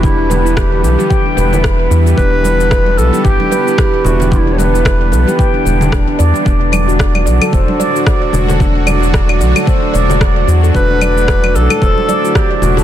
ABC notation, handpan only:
X:1
M:4/4
L:1/16
Q:"Swing 16ths" 1/4=112
K:Em
V:1 name="Handpan"
D D B E B B B G g D B E B B E G | D D B E B B B G g D B E B B E G | D D B E B B B G g D B G D D d D | D D d F d d d A c D d F d d F A |
D D d F d d d A c D d F d d F A | D D d F d d d A c D d F d d F A |]